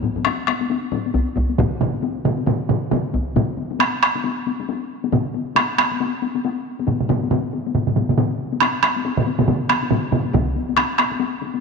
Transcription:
0.03 taiko low-mid, taiko high
0.16 taiko low-mid, taiko high
0.25 taiko rim, taiko high
0.47 taiko rim, taiko high
0.61 taiko high
0.70 taiko high
0.92 taiko low-mid, taiko high
1.06 taiko high
1.14 taiko, taiko high
1.36 taiko, taiko high
1.50 taiko high
1.58 taiko, taiko low-mid, taiko mid, taiko high
1.81 taiko low-mid, taiko mid
1.94 taiko high
2.03 taiko high
2.25 taiko low-mid, taiko mid, taiko high
2.38 taiko high
2.46 taiko low-mid, taiko mid, taiko high
2.69 taiko low-mid, taiko mid, taiko high
2.91 taiko low-mid, taiko mid, taiko high
3.13 taiko, taiko high
3.36 taiko low-mid, taiko mid, taiko high
3.58 taiko high
3.71 taiko high
3.79 taiko rim, taiko high
4.03 taiko rim
4.15 taiko high
4.24 taiko high
4.47 taiko high
4.60 taiko high
4.69 taiko high
5.04 taiko high
5.12 taiko low-mid, taiko mid, taiko high
5.34 taiko high
5.56 taiko rim, taiko high
5.78 taiko rim, taiko high
5.92 taiko high
6.00 taiko high
6.22 taiko high
6.35 taiko high
6.45 taiko high
6.80 taiko high
6.88 taiko low-mid, taiko mid, taiko high
7.00 taiko low-mid, taiko mid
7.09 taiko low-mid, taiko mid, taiko high
7.23 taiko high
7.31 taiko low-mid, taiko mid, taiko high
7.53 taiko high
7.67 taiko high
7.75 taiko low-mid, taiko mid, taiko high
7.87 taiko low-mid, taiko mid
7.96 taiko low-mid, taiko mid, taiko high
8.09 taiko low-mid, taiko mid, taiko high
8.18 taiko low-mid, taiko mid, taiko high
8.53 taiko high
8.60 taiko rim, taiko high
8.83 taiko rim, taiko high
8.96 taiko high
9.05 taiko high
9.17 taiko low-mid, taiko mid
9.27 taiko high
9.39 taiko low-mid, taiko mid, taiko high
9.48 taiko low-mid, taiko mid, taiko high
9.69 taiko rim, taiko high
9.83 taiko high
9.91 taiko low-mid, taiko mid, taiko high
10.12 taiko low-mid, taiko mid, taiko high
10.26 taiko high
10.34 taiko, taiko low-mid, taiko mid, taiko high
10.56 taiko high
10.69 taiko high
10.77 taiko rim, taiko high
10.98 taiko rim, taiko high
11.12 taiko high
11.20 taiko high
11.42 taiko high
11.54 taiko high

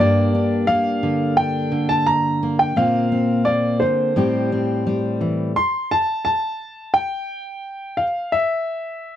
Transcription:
Already playing: D5
0.00 G2 A#3 D4 G4
0.35 D4
0.67 A#3 F5
1.03 D3
1.37 D4 G5
1.72 D3
1.89 A5
2.06 A#5
2.43 A#3
2.59 G5
2.76 A#2 A#3 C4 F4 F5
3.12 C4
3.45 A#3 D5
3.80 D3 C5
4.16 A2 G3 C4 G4
4.52 C4
4.87 G3
5.21 E3
5.56 C6
5.91 A5
6.25 A5
6.94 G5
7.97 F5
8.32 E5

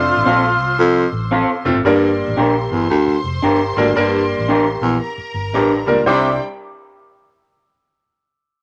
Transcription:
Already playing: F1 A3 C4 D4 F4 C5 C6 F6
0.17 A1
0.25 A#1 C4 F4 A4
0.59 C2
0.79 F2
1.12 A1
1.31 C4 F4 A4
1.65 F1 A3 C4 F4
1.75 G#1
1.84 G1 G2 G3 A#3 D4 A#4 C5 C6
2.28 A1
2.37 A#1 D4 G4 A#4
2.71 G1 E2
2.90 D2
3.07 muted fingered electric bass stroke
3.24 F1
3.42 G1 D4 G4 A#4
3.76 G#1 D2 G3 A#3 D4 A#4
3.95 G1 G2 G3 A#3 D4 A#4
4.39 A1
4.48 D4 G4 A#4
4.81 A#1 E2
5.01 A#4 A#5
5.18 muted fingered electric bass stroke
5.34 G1
5.54 A1 G2 D4 G4 A#4
5.86 C#2 A#2 G3 A#3 D4 A#4
6.06 C2 C3 G3 D4 E4 G4 C5 D5 G5

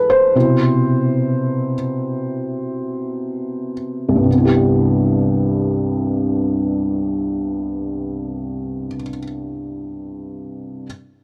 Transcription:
Already playing: A4 B4
0.10 C5
0.35 B2 C3 E4
4.09 C2
4.16 G2
4.24 C3
4.31 B3
4.38 E4
4.45 G4

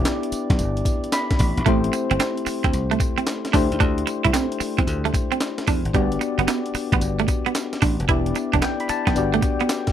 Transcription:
Already playing: B3 D4 E4 G4 D5
0.05 snare, clap, closed hi-hat, tambourine
0.23 closed hi-hat
0.32 muted slap bass stroke, closed hi-hat, tambourine
0.50 B1, kick, snare, closed hi-hat
0.59 G1, closed hi-hat, tambourine
0.77 closed hi-hat
0.85 kick, closed hi-hat, tambourine
1.04 closed hi-hat
1.12 B5, snare, clap, closed hi-hat, tambourine
1.31 kick, snare, closed hi-hat
1.39 A1, kick, open hi-hat, tambourine
1.57 A#1, closed hi-hat
1.66 A1 A3 C4 E4 G4 C5, kick, closed hi-hat
1.84 closed hi-hat
1.93 muted clean electric guitar stroke, closed hi-hat, tambourine
2.11 G1 C4, closed hi-hat
2.20 C4, snare, clap, closed hi-hat, tambourine
2.37 closed hi-hat
2.46 muted slap bass stroke, muted clean electric guitar stroke, open hi-hat, tambourine
2.64 D2 C4, kick, closed hi-hat
2.73 C2, closed hi-hat, tambourine
2.91 A3, closed hi-hat
3.00 muted clean electric guitar stroke, kick, closed hi-hat, tambourine
3.18 C4, closed hi-hat
3.27 snare, clap, closed hi-hat, tambourine
3.45 snare, closed hi-hat
3.53 D2 A3 D4 E4 G4 C5, kick, open hi-hat, tambourine
3.72 D#2, closed hi-hat
3.80 D2 D4, kick, closed hi-hat
3.98 closed hi-hat
4.07 muted clean electric guitar stroke, closed hi-hat, tambourine
4.24 C2 E4, kick, closed hi-hat
4.33 C4, snare, clap, closed hi-hat, tambourine
4.52 closed hi-hat
4.60 muted clean electric guitar stroke, muted slap bass stroke, open hi-hat, tambourine
4.78 E2 C4, kick, closed hi-hat
4.87 D2, closed hi-hat, tambourine
5.05 A3, closed hi-hat
5.14 muted clean electric guitar stroke, kick, closed hi-hat, tambourine
5.32 C4, closed hi-hat
5.40 snare, clap, closed hi-hat, tambourine
5.58 snare, closed hi-hat
5.67 E2 D4, kick, open hi-hat, tambourine
5.85 G#1, closed hi-hat
5.94 G1 G3 B3 D4 F#4 G4 D5, kick, closed hi-hat
6.12 closed hi-hat
6.21 muted clean electric guitar stroke, closed hi-hat, tambourine
6.38 F#1 B3, closed hi-hat
6.48 B3, snare, clap, closed hi-hat, tambourine
6.66 closed hi-hat
6.74 muted slap bass stroke, muted clean electric guitar stroke, open hi-hat, tambourine
6.92 A1 B3, kick, closed hi-hat
7.01 G1, closed hi-hat, tambourine
7.19 A3, closed hi-hat
7.28 muted clean electric guitar stroke, kick, closed hi-hat, tambourine
7.46 B3, closed hi-hat
7.55 snare, clap, closed hi-hat, tambourine
7.73 snare, closed hi-hat
7.82 A1 D4, kick, open hi-hat, tambourine
8.00 F1, closed hi-hat
8.08 E1 B3 D4 E4 G4 D5, kick, closed hi-hat
8.26 closed hi-hat
8.35 muted clean electric guitar stroke, closed hi-hat, tambourine
8.53 E1 D4, kick, closed hi-hat
8.62 B3 G5, snare, clap, closed hi-hat, tambourine
8.80 B5, closed hi-hat
8.89 A5, muted slap bass stroke, muted clean electric guitar stroke, closed hi-hat, tambourine
9.07 B1 B3 G5, kick, snare, closed hi-hat
9.15 G1 B3 D4 F#4 G4 D5, closed hi-hat, tambourine
9.34 A3, closed hi-hat
9.42 muted clean electric guitar stroke, kick, closed hi-hat, tambourine
9.60 B3, closed hi-hat
9.69 snare, clap, closed hi-hat, tambourine
9.87 kick, snare, closed hi-hat

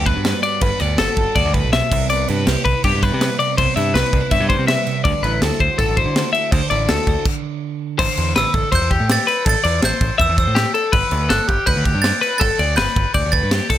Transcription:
Already playing: D2 G2 G3 F#4 A4
0.06 B3 B4, kick, crash
0.16 G2
0.25 G3, snare, crash
0.43 B3 D5, crash
0.61 G1 G2 B4, kick, crash
0.80 D2 B3 D5, crash
0.98 G1 F#4 A4, snare, crash
1.17 G1 A4, kick, crash
1.35 D2 F#4 D5, kick, crash
1.45 D2
1.54 A2 B4, kick, crash
1.64 B1
1.73 B2 E5, snare, crash
1.92 C2 C3, kick, crash
2.10 B3 D5, crash
2.28 G2 E4 B4, crash
2.47 C2 G4 B4, snare, crash
2.65 C2 E4 B4, kick, crash
2.84 G2 B3 G4, kick, crash
2.95 G2
3.03 G3 B4, kick, crash
3.14 C3
3.21 B3, snare, crash
3.38 C3 D5, crash
3.58 C2 B3 C5, kick, crash
3.76 G2 E4 E5, crash
3.94 C2 B4, snare, crash
4.04 snare
4.13 C2 D4, kick, crash
4.21 E4
4.31 G2 B3 E5, kick, crash
4.40 G2
4.49 G3 C5, kick, crash
4.59 C3
4.67 B3 E5, snare, crash
4.86 C3, crash
5.04 D2 D3 D5, kick, crash
5.23 A1 E4 B4, crash
5.42 D2 F#4 A4, snare, crash
5.52 snare
5.60 D2 C5, kick, crash
5.78 A1 F#4 A4, kick, crash
5.88 A1
5.97 E4 C5, kick, crash
6.06 D3
6.16 A3, snare, crash
6.33 E4 E5, crash
6.51 D2 D3 C5, kick, crash
6.70 A1 E4 D5, crash
6.89 D2 F#4 A4, snare, crash
7.07 D2 C5, kick, crash
7.25 kick, crash
7.99 A1 C5, kick, crash
8.17 E2, crash
8.36 A1 B4 E6, snare, crash
8.45 snare
8.54 A1 A4, kick, crash
8.72 E2 C5 G6, kick, crash
8.81 E2
8.90 G4, kick, crash
9.00 A2
9.09 A6, snare, crash
9.27 B4, crash
9.45 A1 A4, kick, crash
9.49 A6
9.64 E2 D5, crash
9.81 A1 C5 G6, snare, crash
10.01 A1, kick, crash
10.18 E2 E5 E6, kick, crash
10.29 E2
10.37 C5 E6, kick, crash
10.47 A2
10.55 G4, snare, crash
10.74 A4, crash
10.92 G1 B4, kick, crash
11.11 D2, crash
11.29 G1 A4 F#6, snare, crash
11.48 G1 G4, kick, crash
11.66 D2 B4 G6, kick, crash
11.76 D2
11.85 G4, kick, crash
11.95 G2
12.02 A6, snare, crash
12.21 B4, crash
12.38 G1 A4 A6, kick, crash
12.59 D2 D5, crash
12.76 G1 B4 G6, snare, crash
12.87 snare
12.96 G1, kick, crash
13.14 D2 D5 G6, kick, crash
13.25 D2
13.32 B4 A6, kick, crash
13.43 G2
13.51 G4, snare, crash
13.70 C2 A4, kick, crash

